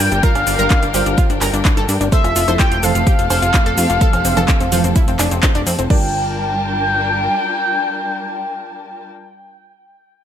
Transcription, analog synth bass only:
0.12 0.21 G1 loud
0.35 0.44 G1 medium
0.47 0.56 G1 loud
0.59 0.68 G1 medium
0.83 0.92 G1 medium
0.94 1.04 G1 loud
1.06 1.15 G1 medium
1.30 1.39 G1 medium
1.41 1.51 G1 loud
1.53 1.62 G1 medium
1.77 1.86 G1 medium
1.89 1.98 G2 loud
2.01 2.10 G1 medium
2.24 2.33 F1 medium
2.36 2.45 F1 loud
2.48 2.57 F1 medium
2.72 2.81 F1 loud
2.83 2.92 F1 loud
2.95 3.04 F1 loud
3.19 3.28 F1 medium
3.30 3.40 F1 loud
3.42 3.51 F1 medium
3.66 3.75 F1 medium
3.78 3.87 F2 loud
3.90 3.99 F1 medium
4.13 4.22 F1 medium
4.25 4.34 F1 loud
4.37 4.46 F1 loud
4.60 4.69 F1 medium
4.72 4.81 F1 loud
4.84 4.93 F1 medium
5.08 5.17 F1 medium
5.19 5.29 F1 loud
5.31 5.40 F1 medium
5.55 5.64 F1 medium
5.67 5.76 F2 loud
5.79 5.88 F1 medium
5.90 7.28 G1 loud

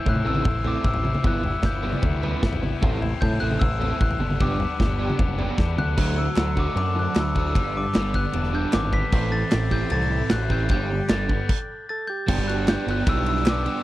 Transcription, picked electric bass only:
0.06 0.21 A2 medium
0.25 0.41 A1 medium
0.45 0.75 A1 medium
0.84 1.15 A1 medium
1.24 1.55 G1 loud
1.64 1.94 G1 medium
2.03 2.33 D2 medium
2.43 2.73 G#1 medium
2.83 3.13 A1 loud
3.22 3.37 A2 medium
3.42 3.57 A1 medium
3.62 3.92 A1 medium
4.01 4.16 A1 loud
4.19 4.64 G1 loud
4.80 5.10 G1 medium
5.19 5.49 F#1 medium
5.58 5.76 E2 medium
5.78 5.96 D2 medium
5.97 6.27 D2 loud
6.37 6.67 D2 medium
6.76 7.06 F#2 medium
7.16 7.57 D2 medium
7.55 7.85 G1 loud
7.96 8.25 G1 loud
8.34 8.64 E1 medium
8.74 9.04 G#1 loud
9.13 9.43 A1 loud
9.53 9.83 A1 medium
9.91 10.21 C2 medium
10.32 10.71 A1 loud
10.70 11.00 G1 loud
11.10 11.40 G1 medium
12.28 12.35 G1 loud
12.39 12.75 G1 medium
12.87 13.02 G1 medium
13.07 13.66 B1 loud

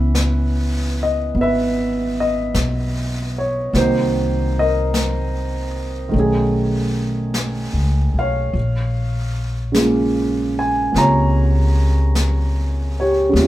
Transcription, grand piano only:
0.00 3.72 E3 soft
0.00 1.33 B3 soft
0.00 3.75 C#4 soft
0.00 3.77 E4 soft
0.00 0.96 B4 medium
1.03 1.39 D#5 medium
1.35 3.74 B3 soft
1.41 3.73 B4 medium
1.41 2.21 E5 medium
2.20 3.41 D#5 medium
3.38 3.73 C#5 medium
3.74 6.07 D#3 soft
3.74 6.13 A#3 soft
3.74 6.14 C4 soft
3.74 6.14 F#4 soft
3.74 4.59 C5 medium
3.79 6.12 D#4 soft
4.59 6.13 A#4 soft
4.59 8.14 D#5 medium
6.09 8.52 D#3 soft
6.09 8.54 A3 soft
6.16 8.56 C#4 soft
6.16 8.57 G#4 soft
8.19 10.55 C#5 soft
8.19 9.72 F5 medium
9.72 13.28 C#3 soft
9.72 13.34 G#3 soft
9.76 10.91 A#3 soft
9.76 10.94 F4 soft
10.59 10.97 G#5 medium
10.92 13.34 C3 soft
10.92 13.33 A#3 soft
10.92 13.35 F4 soft
10.98 12.98 C#5 medium
10.98 13.03 A#5 medium
13.00 13.47 G4 soft
13.00 13.47 C#5 medium
13.29 13.47 C#3 soft
13.29 13.47 G3 soft
13.36 13.47 C3 soft
13.36 13.47 F4 soft

